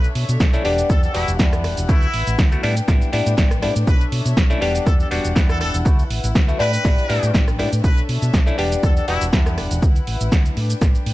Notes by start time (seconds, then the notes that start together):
Already playing: D4 A4 C#5 E5
0.04 closed hi-hat, shaker
0.15 B2, open hi-hat
0.29 B2, closed hi-hat, shaker
0.40 B1, kick, snare, closed hi-hat, shaker
0.53 A3 C#4 D4 E4, closed hi-hat, shaker
0.65 E1 G3 B3 D4 G4 F#5, open hi-hat
0.78 closed hi-hat, shaker
0.90 E2 A4, kick, cross-stick, closed hi-hat, shaker
1.03 A4, closed hi-hat, shaker
1.14 E1 G3 B3 D4 E4 F#4, open hi-hat
1.28 E1, shaker
1.39 E2 G3 B3 D4 E4, kick, snare, closed hi-hat, shaker
1.53 cross-stick, closed hi-hat, shaker
1.64 E1, cross-stick, open hi-hat
1.77 E1, closed hi-hat, shaker
1.89 D2 A3 B3 E4 F#4 B4, kick, closed hi-hat, shaker
2.02 closed hi-hat, shaker
2.14 A1, open hi-hat
2.27 A1, closed hi-hat, shaker
2.39 D2, kick, snare, closed hi-hat, shaker
2.52 A3 B3 E4 F#4, closed hi-hat, shaker
2.63 A2 G3 B3 D4 E4 B4 G5, open hi-hat
2.77 closed hi-hat, shaker
2.88 A1 G3 B3 D4 E4, kick, cross-stick, snare, closed hi-hat, shaker
3.02 muted fingered electric bass stroke, closed hi-hat, shaker
3.13 A2 G3 B3 D4 E4, open hi-hat
3.26 A2, closed hi-hat, shaker
3.37 A1 G3 B3 D4 E4, kick, snare, closed hi-hat, shaker
3.51 cross-stick, closed hi-hat, shaker
3.62 A2 G3 B3 D4 E4, cross-stick, open hi-hat
3.76 A2, closed hi-hat, shaker
3.87 B1 A4 B4 C#5 E5, kick, closed hi-hat, shaker
4.01 closed hi-hat, shaker
4.12 B2, open hi-hat
4.26 B2, closed hi-hat, shaker
4.37 B1, kick, snare, closed hi-hat, shaker
4.50 A3 C#4 D4 E4, closed hi-hat, shaker
4.61 E1 G3 B3 D4 G4 F#5, open hi-hat
4.75 closed hi-hat, shaker
4.86 E2 A4, kick, cross-stick, closed hi-hat, shaker
5.00 A4, closed hi-hat, shaker
5.11 E1 G3 B3 D4 F#4, open hi-hat
5.25 E1, shaker
5.35 E2 G3 B3 D4 E4, kick, snare, closed hi-hat, shaker
5.49 A4, cross-stick, closed hi-hat, shaker
5.61 E1 A4, cross-stick, open hi-hat
5.74 E1, closed hi-hat, shaker
5.85 D2 A3 B3 E4 F#4 B4, kick, closed hi-hat, shaker
5.99 closed hi-hat, shaker
6.10 A1, open hi-hat
6.24 A1, closed hi-hat, shaker
6.35 D2, kick, snare, closed hi-hat, shaker
6.48 A3 B3 E4 F#4, closed hi-hat, shaker
6.59 A2 G3 B3 D4 E4 B4 G5, open hi-hat
6.73 closed hi-hat, shaker
6.84 A1 G3 B3 D4 E4, kick, cross-stick, snare, closed hi-hat, shaker
6.98 muted fingered electric bass stroke, closed hi-hat, shaker
7.09 A2 G3 B3 D4 E4, open hi-hat
7.23 A2, closed hi-hat, shaker
7.34 A1 G3 B3 D4 E4, kick, snare, closed hi-hat, shaker
7.48 cross-stick, closed hi-hat, shaker
7.59 A2 G3 B3 D4 E4, cross-stick, open hi-hat
7.73 A2, closed hi-hat, shaker
7.84 B1 A4 B4 C#5 E5, kick, closed hi-hat, shaker
7.97 closed hi-hat, shaker
8.09 B2, open hi-hat
8.22 B2, closed hi-hat, shaker
8.34 B1, kick, snare, closed hi-hat, shaker
8.46 A3 C#4 D4 E4, closed hi-hat, shaker
8.58 E1 G3 B3 D4 G4 F#5, open hi-hat
8.72 closed hi-hat, shaker
8.83 E2 A4, kick, cross-stick, closed hi-hat, shaker
8.96 A4, closed hi-hat, shaker
9.08 E1 G3 B3 D4 E4 F#4, open hi-hat
9.21 E1, closed hi-hat, shaker
9.33 E2 G3 B3 D4 E4, kick, snare, closed hi-hat, shaker
9.46 cross-stick, closed hi-hat, shaker
9.58 E1, cross-stick, open hi-hat
9.71 E1, closed hi-hat, shaker
9.82 D2 E4 B4, kick, closed hi-hat, shaker
9.96 closed hi-hat, shaker
10.07 A1, open hi-hat
10.21 A1, closed hi-hat, shaker
10.32 D2, kick, snare, closed hi-hat, shaker
10.45 closed hi-hat, shaker
10.57 A2 D4 B4 G5, open hi-hat
10.70 closed hi-hat, shaker
10.81 A1, kick, cross-stick, snare, closed hi-hat, shaker
10.95 muted fingered electric bass stroke, closed hi-hat, shaker
11.06 A2, open hi-hat